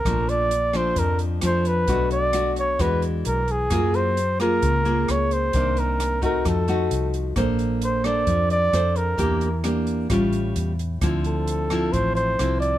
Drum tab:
HH |xxxxxxxx|xxxxxxxx|xxxxxxxx|xxxxxxxx|
SD |r--r--r-|--r-r---|r--r--r-|--r-r---|
BD |o---o---|o---o---|o---o---|o--oo---|

HH |xxxxxxxx|xxxxxxxx|xxxxxxxx|
SD |r--r--r-|--r-r---|r--r--r-|
BD |o---o---|o---o---|o---o---|